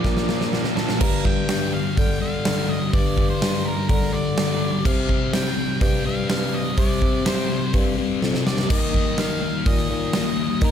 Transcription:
Already playing: A#2 D3 F3 A#3 D4 D5
0.03 A#2 F3 A#3, kick, snare
0.17 snare
0.27 D3 F3 A#3 D4, snare
0.32 A#2
0.41 snare
0.51 A#2 D3 F3 A#3 D4, snare
0.64 snare
0.76 A#3 A4, snare
0.80 F3
0.89 snare
0.99 G2 D3 G3 A#4, kick, crash
1.25 D3 G3 G5, kick
1.49 G2 D3 G3, snare, open hi-hat
1.73 D3 G3 F5
1.97 D3 G5, kick, open hi-hat
2.20 D3 G3 F5
2.44 G2 D3 G3, snare, open hi-hat
2.69 D#5
2.93 G2 D3 G3 D5, kick, open hi-hat
3.16 D3 G3, kick
3.30 C5
3.41 G2 D3 G3, snare, open hi-hat
3.64 D3 G3 A#4
3.89 D3 A#4, kick, open hi-hat
4.02 snare
4.12 D3 G3 D5
4.37 G2 D3 G3, snare, open hi-hat
4.84 C3 G3 C4 F5, kick, crash
5.08 G3 C4, kick
5.33 C3 G3 C4 G5, snare, open hi-hat
5.56 G3 C4
5.81 G2 G5, kick, open hi-hat
6.04 G2 G3 C4 F5
6.29 C3 G3 C4, snare, open hi-hat
6.54 D#5
6.77 C3 G3 C4 D5, kick, open hi-hat
7.01 G3 C4, kick
7.25 C3 G3 C4 C5, snare, open hi-hat
7.49 G3 C4
7.73 G2, kick, open hi-hat
7.97 G2 G3 C4
8.21 F2 C3 G3 C4, snare
8.34 snare
8.46 D#2 D5, snare
8.58 snare
8.69 D#3 A#3 D#4 D#5, kick, open hi-hat, crash
8.93 A#3 D#4, kick
9.17 D#3 A#3 D#4 F5, snare, open hi-hat
9.41 A#3 D#4
9.66 A#2 D#5, kick, open hi-hat
9.77 snare
9.89 A#2 A#3 D#4
10.13 D#3 A#3, snare, open hi-hat
10.17 D#4
10.61 D#3 A#3 D#4 A#4, kick, open hi-hat

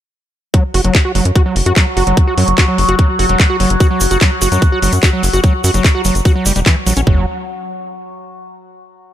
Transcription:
0.54 F#3 F#4, kick, closed hi-hat
0.74 F#1 F#4, open hi-hat
0.84 F#1 F#3, closed hi-hat
0.95 kick, clap, closed hi-hat
1.05 F#4
1.15 F#1 F#3, open hi-hat
1.25 F#2, closed hi-hat
1.36 F#4, kick, closed hi-hat
1.46 F#3
1.56 F#1, open hi-hat
1.66 F#2 F#4, closed hi-hat
1.76 F#3, kick, clap, closed hi-hat
1.97 F#1 F#4, open hi-hat
2.07 F#1 F#3, closed hi-hat
2.17 kick, closed hi-hat
2.27 F#4
2.38 F#2 F#3, open hi-hat
2.48 F#1, closed hi-hat
2.58 F#4, kick, clap, closed hi-hat
2.68 F#3
2.78 F#1, open hi-hat
2.89 F#1 F#4, closed hi-hat
2.99 F#3, kick, closed hi-hat
3.19 F#1 F#4, open hi-hat
3.29 E1 F#3, closed hi-hat
3.40 kick, clap, closed hi-hat
3.50 F#4
3.60 F#1 F#3, open hi-hat
3.70 F#1, closed hi-hat
3.80 F#4, kick, closed hi-hat, shaker
3.91 F#3
4.00 F#1, open hi-hat, shaker
4.11 F#1 F#4, closed hi-hat, shaker
4.21 F#3, kick, clap, closed hi-hat, shaker
4.42 F#1 F#4, open hi-hat, shaker
4.52 F#2 F#3, closed hi-hat, shaker
4.62 kick, closed hi-hat, shaker
4.72 F#4
4.82 F#1 F#3, open hi-hat, shaker
4.92 F#2, closed hi-hat, shaker
5.03 F#4, kick, clap, closed hi-hat, shaker
5.13 F#3
5.23 F#1, open hi-hat, shaker
5.33 F#1 F#4, closed hi-hat, shaker
5.43 F#3, kick, closed hi-hat, shaker
5.64 F#2 F#4, open hi-hat, shaker
5.74 F#1 F#3, closed hi-hat, shaker
5.84 kick, clap, closed hi-hat, shaker
5.95 F#4
6.05 F#1 F#3, open hi-hat, shaker
6.15 F#1, closed hi-hat, shaker
6.25 F#4, kick, closed hi-hat, shaker
6.36 F#3
6.46 F#1 G3, open hi-hat, shaker
6.55 E1 G3, closed hi-hat, shaker
6.66 E3, kick, clap, closed hi-hat, shaker
6.87 A#1 F#3, open hi-hat, shaker
6.96 A#1 C#4, closed hi-hat, shaker
7.07 F#1 F#3, kick, floor tom

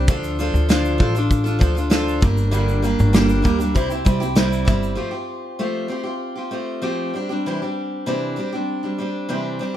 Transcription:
0.08 D2 D3 F3 D4 F4 A4, kick, shaker
0.24 shaker
0.39 F3 D4 F4 A4, shaker
0.54 D2, shaker
0.69 D3 F3 D4 F4 A4, snare, shaker
0.85 shaker
0.98 A1 F3 D4 F4 A4, kick
1.15 D4 F4 A4, shaker
1.31 kick, shaker
1.44 D4 F4 A4, shaker
1.59 D2 F3 D4 F4 A4, kick, shaker
1.75 D4 F4 A4, shaker
1.90 D3 F3 D4 F4 A4, snare, shaker
2.08 shaker
2.21 G1 G3 A#3 D4 G4, kick, shaker
2.37 shaker
2.51 G2 D3 G3 A#3 D4 G4, shaker
2.68 shaker
2.82 G3 A#3 D4 G4, shaker
2.99 G1, shaker
3.13 G2 D3 G3 A#3 D4 G4, snare, shaker
3.29 shaker
3.42 D2 G3 A#3 D4 G4, kick, shaker
3.58 G3 A#3 D4 G4, shaker
3.75 C2 C3 G3 C4 E4 G4, kick, shaker
3.90 C4 E4 G4, shaker
4.05 C2 G3 C4 E4 G4, kick, shaker
4.20 C4 E4 G4, shaker
4.35 C3 G3 C4 E4 G4, snare, shaker
4.53 shaker
4.65 G1 G3 C4 E4 G4, kick, snare, shaker
4.83 shaker
4.95 F3 A3 C4 F4 G4
5.11 C4 F4 G4
5.59 F3 A3 C4 F4 G4
5.88 A3 C4 F4 G4
6.03 C4 F4 G4
6.36 C4 F4 G4
6.51 A3 C4 F4 G4
6.82 F3 A3 C4 F4 G4
7.14 G3 C4 D4 G4
7.29 G3 C4 D4 G4
7.46 C3 E3 G3 C4 D4 G4
7.62 G3 C4 D4 G4
8.06 C3 E3 G3 C4 D4 G4
8.36 G3 C4 D4 G4
8.53 G3 C4 D4 G4
8.83 G3 C4 D4 G4
8.98 G3 C4 D4 G4
9.29 C3 E3 G3 C4 D4 G4
9.59 G3 C4 D4 G4

